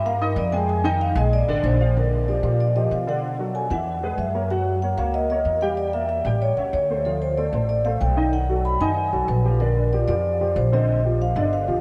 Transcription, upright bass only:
0, 0, Header, 1, 2, 480
1, 0, Start_track
1, 0, Tempo, 318640
1, 1033, Time_signature, 4, 2, 24, 8
1, 17788, End_track
2, 0, Start_track
2, 0, Title_t, "Upright bass"
2, 0, Program_c, 0, 32
2, 0, Note_on_c, 0, 43, 103
2, 499, Note_off_c, 0, 43, 0
2, 545, Note_on_c, 0, 41, 103
2, 1661, Note_off_c, 0, 41, 0
2, 1739, Note_on_c, 0, 34, 106
2, 2189, Note_off_c, 0, 34, 0
2, 2231, Note_on_c, 0, 32, 78
2, 2453, Note_off_c, 0, 32, 0
2, 2462, Note_on_c, 0, 34, 103
2, 3579, Note_off_c, 0, 34, 0
2, 3661, Note_on_c, 0, 46, 92
2, 4333, Note_off_c, 0, 46, 0
2, 4384, Note_on_c, 0, 47, 89
2, 5502, Note_off_c, 0, 47, 0
2, 5577, Note_on_c, 0, 40, 88
2, 6252, Note_off_c, 0, 40, 0
2, 6292, Note_on_c, 0, 42, 91
2, 7416, Note_off_c, 0, 42, 0
2, 7493, Note_on_c, 0, 37, 87
2, 8170, Note_off_c, 0, 37, 0
2, 8209, Note_on_c, 0, 40, 87
2, 9335, Note_off_c, 0, 40, 0
2, 9410, Note_on_c, 0, 33, 91
2, 9866, Note_off_c, 0, 33, 0
2, 9892, Note_on_c, 0, 37, 64
2, 10124, Note_off_c, 0, 37, 0
2, 10137, Note_on_c, 0, 38, 89
2, 11260, Note_off_c, 0, 38, 0
2, 11337, Note_on_c, 0, 33, 89
2, 12014, Note_off_c, 0, 33, 0
2, 12065, Note_on_c, 0, 35, 95
2, 13185, Note_off_c, 0, 35, 0
2, 13261, Note_on_c, 0, 42, 88
2, 13713, Note_off_c, 0, 42, 0
2, 13748, Note_on_c, 0, 35, 70
2, 13971, Note_off_c, 0, 35, 0
2, 13980, Note_on_c, 0, 34, 96
2, 15103, Note_off_c, 0, 34, 0
2, 15184, Note_on_c, 0, 41, 91
2, 15858, Note_off_c, 0, 41, 0
2, 15906, Note_on_c, 0, 34, 100
2, 17027, Note_off_c, 0, 34, 0
2, 17109, Note_on_c, 0, 31, 90
2, 17559, Note_off_c, 0, 31, 0
2, 17593, Note_on_c, 0, 35, 64
2, 17788, Note_off_c, 0, 35, 0
2, 17788, End_track
0, 0, End_of_file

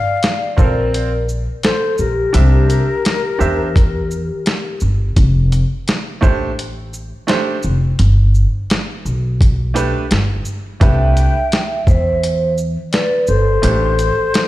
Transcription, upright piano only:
0, 0, Header, 1, 2, 480
1, 0, Start_track
1, 0, Key_signature, -2, "minor"
1, 0, Tempo, 705882
1, 1591, Time_signature, 4, 2, 24, 8
1, 9846, End_track
2, 0, Start_track
2, 0, Title_t, "Upright piano"
2, 0, Program_c, 0, 0
2, 385, Note_on_c, 0, 60, 70
2, 389, Note_on_c, 0, 65, 64
2, 392, Note_on_c, 0, 69, 45
2, 397, Note_on_c, 0, 72, 72
2, 436, Note_on_c, 0, 70, 56
2, 446, Note_off_c, 0, 69, 0
2, 746, Note_off_c, 0, 60, 0
2, 748, Note_off_c, 0, 65, 0
2, 752, Note_off_c, 0, 72, 0
2, 772, Note_off_c, 0, 70, 0
2, 1582, Note_on_c, 0, 62, 64
2, 1585, Note_on_c, 0, 67, 58
2, 1591, Note_on_c, 0, 72, 52
2, 1594, Note_on_c, 0, 76, 69
2, 1944, Note_off_c, 0, 62, 0
2, 1946, Note_off_c, 0, 67, 0
2, 1949, Note_off_c, 0, 72, 0
2, 1951, Note_off_c, 0, 76, 0
2, 2302, Note_on_c, 0, 62, 73
2, 2306, Note_on_c, 0, 67, 60
2, 2310, Note_on_c, 0, 72, 65
2, 2315, Note_on_c, 0, 76, 77
2, 2491, Note_off_c, 0, 62, 0
2, 2493, Note_off_c, 0, 67, 0
2, 2495, Note_off_c, 0, 72, 0
2, 2497, Note_off_c, 0, 76, 0
2, 4222, Note_on_c, 0, 57, 84
2, 4226, Note_on_c, 0, 62, 76
2, 4232, Note_on_c, 0, 67, 76
2, 4235, Note_on_c, 0, 72, 97
2, 4411, Note_off_c, 0, 57, 0
2, 4413, Note_off_c, 0, 62, 0
2, 4416, Note_off_c, 0, 67, 0
2, 4418, Note_off_c, 0, 72, 0
2, 4944, Note_on_c, 0, 57, 77
2, 4947, Note_on_c, 0, 62, 79
2, 4953, Note_on_c, 0, 67, 74
2, 4956, Note_on_c, 0, 72, 97
2, 5132, Note_off_c, 0, 57, 0
2, 5134, Note_off_c, 0, 62, 0
2, 5136, Note_off_c, 0, 67, 0
2, 5138, Note_off_c, 0, 72, 0
2, 6624, Note_on_c, 0, 57, 78
2, 6629, Note_on_c, 0, 62, 69
2, 6632, Note_on_c, 0, 67, 71
2, 6636, Note_on_c, 0, 71, 83
2, 6812, Note_off_c, 0, 57, 0
2, 6814, Note_off_c, 0, 62, 0
2, 6816, Note_off_c, 0, 67, 0
2, 6818, Note_off_c, 0, 71, 0
2, 7344, Note_on_c, 0, 57, 70
2, 7348, Note_on_c, 0, 62, 65
2, 7353, Note_on_c, 0, 67, 64
2, 7355, Note_on_c, 0, 71, 78
2, 7706, Note_off_c, 0, 57, 0
2, 7708, Note_off_c, 0, 62, 0
2, 7710, Note_off_c, 0, 67, 0
2, 7711, Note_off_c, 0, 71, 0
2, 9261, Note_on_c, 0, 57, 67
2, 9266, Note_on_c, 0, 62, 57
2, 9272, Note_on_c, 0, 67, 62
2, 9274, Note_on_c, 0, 72, 71
2, 9451, Note_off_c, 0, 57, 0
2, 9453, Note_off_c, 0, 62, 0
2, 9456, Note_off_c, 0, 67, 0
2, 9457, Note_off_c, 0, 72, 0
2, 9846, End_track
0, 0, End_of_file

